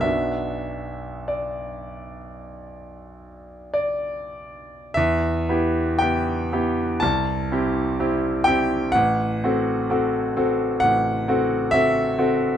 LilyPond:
\new Staff \with { instrumentName = "Grand piano" } { \time 4/4 \key b \minor \tempo 4 = 60 << { e''4 d''2 d''4 | \key e \minor e''4 g''4 a''4. g''8 | fis''2 fis''4 e''4 | } \\ { <b,, b d' fis'>1 | e,8 <b e' g'>8 <b e' g'>8 <b e' g'>8 c,8 <c' e' g'>8 <c' e' g'>8 <c' e' g'>8 | a,,8 <c' fis' a'>8 <c' fis' a'>8 <c' fis' a'>8 a,,8 <c' fis' a'>8 <c' fis' a'>8 <c' fis' a'>8 | } >> }